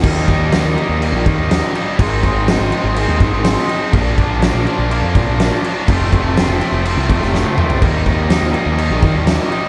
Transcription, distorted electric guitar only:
0.02 0.49 D#3 medium
0.02 0.28 G3 loud
0.02 0.27 A#3 loud
0.02 0.26 D#4 loud
0.27 0.50 G3 medium
0.27 0.51 A#3 medium
0.27 0.53 D#4 medium
0.50 0.98 D#3 medium
0.50 0.76 G3 medium
0.50 0.75 A#3 medium
0.50 0.74 D#4 medium
0.74 1.00 G3 medium
0.74 1.01 A#3 medium
0.74 1.02 D#4 medium
0.99 1.49 D#3 medium
0.99 1.27 G3 loud
0.99 1.26 A#3 loud
0.99 1.24 D#4 medium
1.25 1.76 G3 medium
1.25 1.74 A#3 medium
1.25 1.73 D#4 medium
1.74 1.98 G3 medium
1.74 1.98 A#3 medium
1.74 1.97 D#4 medium
1.98 2.47 G#2 medium
1.98 2.45 D#3 medium
1.98 2.25 G#3 medium
1.98 2.23 C4 medium
1.98 2.22 D#4 loud
2.23 2.47 G#3 medium
2.23 2.48 C4 medium
2.23 2.49 D#4 medium
2.47 2.95 D#3 medium
2.47 2.73 G#3 medium
2.47 2.71 C4 medium
2.47 2.69 D#4 medium
2.71 2.95 G#3 medium
2.71 2.96 C4 medium
2.71 2.96 D#4 medium
2.95 3.44 G#2 loud
2.95 3.45 D#3 loud
2.95 3.21 G#3 loud
2.95 3.20 C4 loud
2.95 3.18 D#4 loud
3.19 3.70 G#3 medium
3.19 3.68 C4 medium
3.19 3.67 D#4 medium
3.68 3.93 G#3 medium
3.68 3.92 C4 medium
3.68 3.91 D#4 medium
3.92 4.40 A#2 loud
3.92 4.20 F3 loud
3.92 4.18 A#3 medium
3.92 4.15 D4 loud
4.17 4.42 F3 medium
4.17 4.42 A#3 medium
4.17 4.43 D4 medium
4.41 4.88 A#2 medium
4.41 4.68 F3 medium
4.41 4.66 A#3 medium
4.41 4.65 D4 medium
4.66 4.89 F3 medium
4.66 4.90 A#3 medium
4.66 4.91 D4 medium
4.89 5.39 A#2 medium
4.89 5.16 F3 loud
4.89 5.15 A#3 loud
4.89 5.13 D4 loud
5.14 5.65 F3 medium
5.14 5.64 A#3 medium
5.14 5.62 D4 medium
5.63 5.88 F3 medium
5.63 5.87 A#3 medium
5.63 5.86 D4 medium
5.87 6.36 F2 medium
5.87 6.34 C3 medium
5.87 6.13 F3 medium
5.87 6.11 A3 loud
5.87 6.11 C4 medium
6.11 6.35 F3 medium
6.11 6.37 A3 medium
6.11 6.38 C4 medium
6.35 6.83 C3 medium
6.35 6.61 F3 medium
6.35 6.59 A3 medium
6.35 6.59 C4 medium
6.59 6.84 F3 medium
6.59 6.84 A3 medium
6.59 6.86 C4 medium
6.83 7.32 F2 medium
6.83 7.33 C3 medium
6.83 7.09 F3 loud
6.83 7.07 A3 loud
6.83 7.06 C4 loud
7.07 7.58 F3 medium
7.07 7.57 A3 medium
7.07 7.56 C4 medium
7.56 7.81 F3 medium
7.56 7.80 A3 medium
7.56 7.83 C4 medium
7.80 8.28 D#3 medium
7.80 8.06 G3 medium
7.80 8.05 A#3 loud
7.80 8.04 D#4 medium
8.04 8.29 G3 medium
8.04 8.30 A#3 medium
8.04 8.32 D#4 medium
8.29 8.75 D#3 medium
8.29 8.54 G3 medium
8.29 8.53 A#3 medium
8.29 8.52 D#4 medium
8.52 8.76 G3 medium
8.52 8.77 A#3 medium
8.52 8.78 D#4 medium
8.76 9.25 D#3 loud
8.76 9.03 G3 loud
8.76 9.01 A#3 loud
8.76 9.00 D#4 loud
9.01 9.52 G3 medium
9.01 9.50 A#3 medium
9.01 9.48 D#4 medium
9.50 9.69 G3 medium
9.50 9.69 A#3 medium
9.50 9.69 D#4 medium

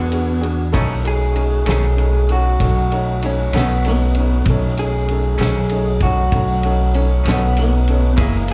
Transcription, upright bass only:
0.00 0.71 E2 medium
0.75 1.64 B1 medium
1.67 2.57 B1 medium
2.61 3.50 B1 medium
3.53 4.43 B1 medium
4.46 5.36 B1 medium
5.40 6.29 B1 medium
6.32 7.22 B1 medium
7.25 8.15 B1 medium
8.18 8.54 F#1 medium

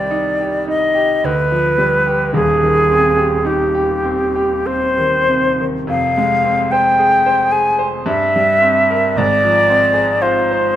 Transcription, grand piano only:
0.00 1.21 C2 medium
0.00 1.27 D#3 soft
0.00 1.27 G3 medium
0.00 0.30 G4 medium
0.11 0.57 D#4 medium
0.40 0.86 G4 soft
0.67 1.13 D#4 soft
0.95 1.24 G4 soft
1.24 2.31 D2 medium
1.51 1.96 F3 medium
1.78 2.23 G3 medium
2.07 2.35 G4 medium
2.33 5.85 D#1 medium
2.33 5.85 D#2 medium
2.63 3.07 D#3 soft
2.91 3.35 C4 soft
3.17 3.63 G4 medium
3.45 3.93 D#4 medium
3.75 4.24 G4 medium
4.04 4.55 C4 soft
4.36 4.85 G4 soft
4.67 5.16 C4 medium
4.98 5.48 D#3 medium
5.28 5.77 C3 soft
5.60 5.90 D#3 soft
5.87 8.02 F1 medium
5.87 8.03 F2 medium
6.18 6.61 G#3 medium
6.44 6.88 C4 medium
6.72 7.15 C5 medium
6.99 7.42 G#4 medium
7.26 7.69 C5 medium
7.52 7.96 G#4 medium
7.79 8.07 C5 medium
8.06 9.13 G2 medium
8.36 8.80 G3 medium
8.61 9.06 C4 medium
8.90 9.17 A#4 medium
9.16 10.76 G#1 medium
9.16 10.76 G#2 medium
9.44 9.85 F3 medium
9.70 10.11 C4 medium
9.93 10.38 G#4 medium
10.22 10.67 F4 medium
10.51 10.76 C5 medium

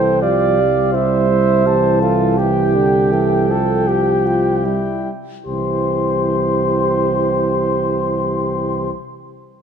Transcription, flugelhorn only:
0.00 0.18 C5 medium
0.22 0.92 D5 medium
0.93 1.99 C5 medium
2.01 2.39 F4 medium
2.38 3.53 G4 medium
3.51 3.89 A4 medium
3.87 5.06 G4 medium
5.46 8.90 C5 soft

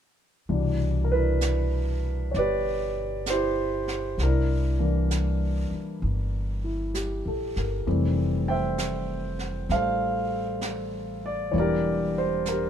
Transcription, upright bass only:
0.49 2.30 C2 medium
2.34 4.15 G1 medium
4.18 5.67 C2 medium
5.71 muted upright bass stroke soft
6.02 7.21 G1 medium
7.26 7.54 A#1 soft
7.56 7.84 G1 soft
7.87 9.66 F1 medium
9.69 11.49 A1 medium
11.54 12.70 E1 medium

